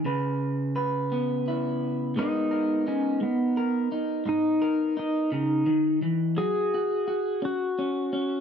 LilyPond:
<<
  \new Staff \with { instrumentName = "Clean electric guitar" } { \time 6/8 \key gis \minor \tempo 4. = 57 << { b'4 b'8 b8 e'4 | <gis b dis' ais'>8 ais'8 dis'4 ais'8 dis'8 | dis'8 ais'8 dis'2 | fis'8 fis'8 fis'4 cis'8 cis'8 | } \\ { cis2. | gis,4 r8 gis4 r8 | gis,4 r8 cis8 dis8 e8 | fis4 r8 cis'8 r4 | } >> }
  \new Staff \with { instrumentName = "Pedal steel guitar" } { \time 6/8 \key gis \minor r2. | dis'4 cis'8 b4 r8 | dis'4 dis'8 dis'4 r8 | gis'4. fis'4. | }
>>